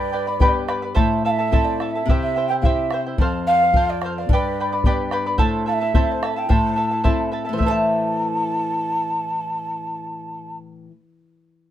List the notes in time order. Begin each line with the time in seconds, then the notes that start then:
Already playing: G2 G4 B4 D5 G5 B5
0.12 B4 D5 G5 B5
0.27 B4 D5 B5
0.40 B3 D4 G4 B4 D5 G5 B5, bombo low
0.68 B4 D5 G5 B5, bombo rim
0.82 B4 D5 B5
0.94 A2 E4 A4 C5 E5 A5, bombo low
1.25 E4 A4 E5 F5 A5
1.30 E5
1.39 E4 A4 A5
1.51 C4 E4 A4 C5 E5 A5, bombo low
1.64 D5
1.80 E4 A4 E5 A5, bombo rim
1.90 E5
1.95 E4 A4 A5
2.06 C3 G4 E5, bombo low
2.10 E4 C5 G5
2.21 E5
2.36 E4 C5 E5 G5
2.48 C5 G5
2.52 E4
2.62 C4 E4 G4 E5 F5, bombo low
2.66 C5 G5
2.91 E4 C5 E5 G5, bombo rim
3.06 E4 C5 G5
3.18 F2 A4 C5 F5, bombo low
3.46 A4 C5 F5
3.61 C5 F5
3.73 C4 F4 A4 C5 F5, bombo low
3.89 D5
4.02 A4 C5, bombo rim
4.06 F5
4.16 C5 D5 F5
4.29 G2 G5, bombo low
4.33 G4 B4 D5 B5
4.60 B4 D5 G5 B5
4.72 B4 D5 B5
4.84 B3 D4 G4 B4 D5 G5 B5, bombo low
5.11 B4 D5 G5 B5, bombo rim
5.26 B4 D5 B5
5.38 A2 E4 A4 C5 E5 A5, bombo low
5.66 E4 A4 E5 F5 A5
5.72 E5
5.81 E4 A4 A5
5.94 C4 E4 A4 C5 E5 A5, bombo low
6.12 C5
6.23 E4 A4 E5 A5, bombo rim
6.36 E4 A4 G5 A5
6.49 A2 E4 A4 C5 E5 A5, bombo low
6.76 E4 A4 E5 A5
6.91 E4 A4 A5
7.04 C4 E4 A4 C5 E5 A5, bombo low
7.32 E4 A4 E5 A5
7.45 E4 A4 A5
7.49 A2
7.53 E3 C5
7.58 A3 E5, bombo low
7.62 E4 A5
7.66 A4 C5 A5
7.71 E5